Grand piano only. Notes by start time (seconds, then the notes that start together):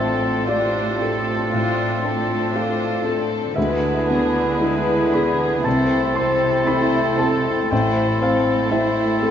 Already playing: A1 C4 E5 F5
0.46 F4 D5
1.02 A4
1.54 A2
2.05 C4
2.55 F4
3.06 A4
3.56 D2 E5
4.10 B3
4.61 E4
5.13 G#4 B5
5.64 C2 A5
6.15 C4 C6
6.67 E4 B5
7.19 A4 A5
7.71 A1 G5
8.22 C4 F5
8.71 E4 E5
9.22 A4